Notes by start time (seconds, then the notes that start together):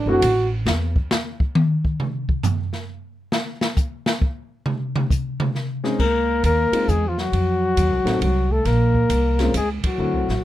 0.06 F#1 A3 C4 D4 E4 F#4
0.22 A1, kick, hi-hat pedal, ride
0.66 E2, snare
0.96 kick
1.11 snare, hi-hat pedal
1.40 kick
1.55 high tom
1.85 kick
2.00 mid tom
2.29 kick
2.43 floor tom, hi-hat pedal
2.73 snare
3.32 snare
3.61 snare
3.77 kick, hi-hat pedal
4.06 snare
4.22 kick
4.66 mid tom
4.96 mid tom
5.10 kick, hi-hat pedal
5.40 mid tom
5.55 snare
5.84 G#3 C4 C#4 D#4 G#4, snare
5.99 C#2 A#3 A#4, kick, crash
6.43 D#2 A#3 A#4, kick, hi-hat pedal, ride
6.72 G#3 C4 D#4 F4, muted upright bass stroke, ride
6.88 E2 G#3 G#4, kick, hi-hat pedal
7.06 F3 F4
7.18 F#3 F#4, snare
7.32 F2, kick, ride
7.77 D#2, kick, hi-hat pedal, ride
7.90 C2
8.04 A1 A3 C4 D#4 F#4, snare, ride
8.21 C2 F#3 F#4, kick, ride
8.50 A3 A4, kick
8.65 A#1 A#3 A#4, kick, snare, ride
8.95 kick
9.09 C2, kick, hi-hat pedal, ride
9.39 G#3 C4 C#4 F4, snare, ride
9.54 C#2 G#3 G#4, kick, hi-hat pedal, ride
9.84 F#3 F#4, muted upright bass stroke, kick, ride
9.98 D2 A3 C4 E4 F#4
10.13 C2
10.28 A1, snare